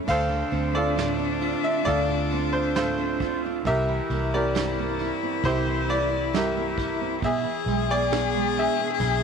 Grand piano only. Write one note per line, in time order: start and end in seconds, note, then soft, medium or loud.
0.08 0.75 A4 medium
0.08 1.84 C5 medium
0.08 0.72 F5 loud
0.75 1.86 F4 medium
0.75 1.85 A4 medium
0.75 1.67 D5 medium
1.64 1.88 E5 loud
1.85 2.76 F4 medium
1.85 2.76 A4 medium
1.85 2.55 D5 loud
2.53 2.74 C5 medium
2.76 3.62 F4 medium
2.76 3.62 A4 medium
2.76 3.39 C5 medium
3.67 4.33 G4 medium
3.67 4.34 A#4 medium
3.67 4.29 E5 loud
4.34 5.44 G4 medium
4.34 6.08 A#4 medium
4.34 5.48 D5 medium
5.45 7.19 E4 medium
5.45 6.34 G4 medium
5.45 5.90 C5 medium
5.90 6.35 D5 medium
6.35 7.20 G4 medium
6.35 7.20 A#4 medium
6.35 6.97 E5 medium
7.24 7.90 G#4 medium
7.24 7.92 E5 medium
7.91 8.58 G#4 medium
7.91 8.59 D5 medium
8.59 9.23 G#4 medium
8.59 9.23 E5 medium